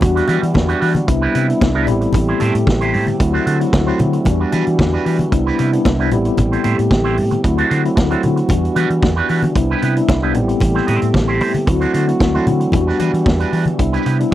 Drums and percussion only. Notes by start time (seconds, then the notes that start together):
0.01 kick, closed hi-hat, muted conga, low conga
0.17 snare, closed hi-hat
0.28 closed hi-hat, muted conga
0.43 closed hi-hat
0.54 kick, snare, high conga
0.69 closed hi-hat
0.82 open hi-hat
0.95 closed hi-hat, high conga
1.08 kick, closed hi-hat
1.35 closed hi-hat, muted conga
1.50 closed hi-hat
1.61 kick, snare, high conga
1.87 closed hi-hat, low conga
2.01 closed hi-hat
2.13 kick, closed hi-hat, muted conga, low conga
2.40 closed hi-hat, muted conga
2.55 closed hi-hat
2.67 kick, snare, high conga
2.81 closed hi-hat
2.94 open hi-hat
3.07 closed hi-hat, high conga
3.20 kick, closed hi-hat
3.47 closed hi-hat, muted conga
3.61 closed hi-hat
3.73 kick, snare, high conga
3.99 closed hi-hat, low conga
4.13 closed hi-hat
4.25 kick, closed hi-hat, muted conga, low conga
4.52 closed hi-hat, muted conga
4.67 closed hi-hat
4.79 kick, snare, high conga
5.06 open hi-hat
5.19 closed hi-hat, high conga
5.32 kick, closed hi-hat
5.59 closed hi-hat, muted conga
5.73 closed hi-hat
5.85 kick, snare, high conga
6.11 closed hi-hat, low conga
6.25 closed hi-hat
6.37 kick, closed hi-hat, muted conga, low conga
6.53 closed hi-hat
6.64 closed hi-hat, muted conga
6.79 closed hi-hat
6.91 kick, snare, high conga
7.17 open hi-hat
7.31 closed hi-hat, high conga
7.44 kick, closed hi-hat
7.58 closed hi-hat
7.71 closed hi-hat, muted conga
7.85 closed hi-hat
7.97 kick, snare, high conga
8.11 closed hi-hat
8.23 closed hi-hat, low conga
8.37 closed hi-hat
8.49 kick, closed hi-hat, muted conga, low conga
8.65 closed hi-hat
8.76 closed hi-hat, muted conga
8.90 closed hi-hat
9.03 kick, snare, high conga
9.29 open hi-hat
9.43 closed hi-hat, high conga
9.56 kick, closed hi-hat
9.82 closed hi-hat, muted conga
9.97 closed hi-hat
10.09 kick, snare, high conga
10.34 closed hi-hat, low conga
10.49 closed hi-hat
10.60 kick, closed hi-hat, muted conga, low conga
10.77 snare
10.88 closed hi-hat, muted conga
11.02 closed hi-hat
11.14 kick, snare, high conga
11.40 open hi-hat
11.54 closed hi-hat, high conga
11.67 kick, closed hi-hat
11.81 closed hi-hat
11.94 closed hi-hat, muted conga
12.09 closed hi-hat
12.20 kick, snare, high conga
12.47 closed hi-hat, low conga
12.61 closed hi-hat
12.72 kick, closed hi-hat, muted conga, low conga
12.89 snare
13.00 closed hi-hat, muted conga
13.14 closed hi-hat
13.26 kick, snare, high conga
13.40 closed hi-hat
13.53 open hi-hat
13.66 closed hi-hat, high conga
13.79 kick, closed hi-hat
13.94 closed hi-hat
14.06 closed hi-hat, muted conga
14.20 closed hi-hat